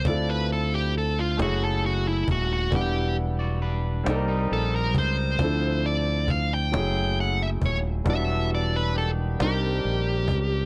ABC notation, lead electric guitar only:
X:1
M:6/8
L:1/16
Q:3/8=45
K:Ddor
V:1 name="Lead electric guitar"
d B A G A F ^F A F E F F | G2 z6 A _B c2- | c2 d2 f g3 ^f e ^c2 | e2 d B A2 G6 |]